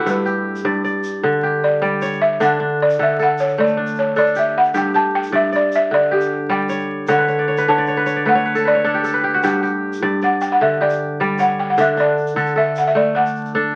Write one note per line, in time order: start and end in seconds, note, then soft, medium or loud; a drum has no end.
0.00 0.12 D3 medium
0.00 0.89 A3 medium
0.00 1.17 D4 medium
0.00 1.54 E4 medium
0.00 0.12 F#4 medium
0.00 0.25 G4 medium
0.00 0.60 A4 medium
0.00 0.42 B4 medium
0.06 0.64 G2 loud
0.06 0.62 B4 medium
0.06 shaker medium
0.26 1.43 G4 medium
0.26 shaker soft
0.56 shaker medium
0.65 2.45 G2 medium
0.65 0.84 D5 medium
0.84 1.82 D5 medium
0.84 shaker soft
1.04 shaker medium
1.23 2.39 D3 medium
1.43 2.84 G4 medium
1.64 2.23 D5 medium
1.82 2.45 G3 medium
1.82 2.93 D5 medium
2.02 2.66 C#5 medium
2.02 shaker medium
2.22 2.41 E5 loud
2.40 2.98 D3 medium
2.40 2.59 D4 medium
2.40 2.82 F#5 medium
2.40 shaker medium
2.60 3.77 D4 medium
2.82 3.01 D5 loud
2.90 shaker soft
2.99 4.79 D3 medium
2.99 3.19 A4 medium
2.99 3.21 E5 medium
3.19 4.16 A4 medium
3.19 3.40 F#5 medium
3.19 shaker soft
3.38 3.59 C#5 medium
3.38 shaker medium
3.58 5.58 A3 medium
3.58 3.77 D5 medium
3.67 shaker soft
3.77 4.16 D4 medium
3.86 shaker soft
3.95 4.17 C#5 medium
3.95 shaker soft
4.16 5.84 D4 medium
4.16 5.48 A4 medium
4.16 4.37 D5 loud
4.16 shaker soft
4.26 shaker soft
4.35 4.74 G4 medium
4.35 4.57 E5 medium
4.35 shaker medium
4.58 4.74 F#5 loud
4.65 shaker soft
4.74 5.31 G2 medium
4.74 4.94 G4 medium
4.74 4.96 G5 loud
4.74 shaker medium
4.94 6.11 G4 medium
4.94 5.15 A5 loud
4.94 shaker soft
5.15 5.34 G5 loud
5.23 shaker soft
5.32 7.13 G2 medium
5.32 5.52 D5 medium
5.32 5.54 E5 medium
5.52 6.49 D5 medium
5.52 5.74 D5 medium
5.52 shaker soft
5.72 5.94 E5 medium
5.72 shaker medium
5.91 7.07 D3 medium
5.91 6.13 D5 loud
6.11 7.52 G4 medium
6.11 6.30 G4 medium
6.21 shaker medium
6.49 7.13 G3 medium
6.49 7.15 D5 medium
6.49 7.11 G5 medium
6.69 7.08 C#5 medium
6.69 shaker medium
7.07 7.67 D3 loud
7.07 7.28 C#5 medium
7.07 7.70 F#5 medium
7.07 shaker medium
7.19 7.58 B4 medium
7.28 7.47 C#5 medium
7.28 shaker soft
7.39 7.75 D5 medium
7.48 7.68 C#5 medium
7.57 7.97 B4 medium
7.57 shaker medium
7.68 9.48 D3 medium
7.68 7.88 C#5 medium
7.68 8.28 A5 medium
7.78 8.12 D5 medium
7.86 8.06 C#5 medium
7.86 shaker soft
7.97 8.26 B4 medium
8.06 8.35 C#5 medium
8.06 shaker medium
8.16 8.41 D5 medium
8.26 10.25 A3 medium
8.26 8.45 B4 medium
8.26 8.64 F#5 loud
8.35 8.74 C#5 medium
8.46 8.65 B4 medium
8.55 8.84 A4 medium
8.55 shaker soft
8.65 9.13 B4 medium
8.65 9.47 D5 loud
8.75 9.90 C#5 medium
8.84 10.52 D4 medium
8.84 9.04 A4 medium
8.94 9.23 G4 medium
9.04 10.36 A4 medium
9.04 shaker medium
9.14 10.37 B4 medium
9.14 shaker soft
9.24 9.43 G4 medium
9.34 9.69 F#4 medium
9.43 10.01 G2 loud
9.43 9.62 G4 medium
9.43 9.99 G5 medium
9.43 shaker medium
9.63 10.80 G4 medium
9.63 shaker soft
9.93 shaker medium
10.02 11.83 G2 medium
10.02 10.22 D5 medium
10.21 11.20 D5 medium
10.21 10.41 F#5 medium
10.21 shaker soft
10.41 10.51 G5 medium
10.41 shaker medium
10.52 10.61 F#5 medium
10.61 11.77 D3 medium
10.61 10.70 E5 medium
10.81 12.22 G4 medium
10.81 11.17 D5 medium
10.90 shaker soft
11.20 11.83 G3 medium
11.20 12.31 D5 medium
11.38 12.03 C#5 medium
11.38 11.60 F#5 medium
11.38 shaker medium
11.60 11.69 G5 medium
11.70 11.79 F#5 medium
11.78 12.35 D3 loud
11.78 11.97 D4 medium
11.78 11.98 E5 medium
11.78 shaker medium
11.97 13.14 D4 medium
11.97 12.35 D5 medium
11.97 shaker soft
12.17 shaker soft
12.27 shaker soft
12.36 13.75 D3 medium
12.36 12.55 A4 medium
12.36 shaker soft
12.46 shaker soft
12.56 13.54 A4 medium
12.56 12.77 E5 medium
12.76 12.87 F#5 medium
12.76 shaker medium
12.87 12.96 E5 medium
12.87 shaker soft
12.95 13.75 A3 medium
12.95 13.16 D5 medium
13.15 13.54 D4 medium
13.15 13.52 F#5 medium
13.26 shaker soft
13.36 shaker soft
13.46 shaker soft
13.55 13.75 D4 medium
13.55 13.75 A4 medium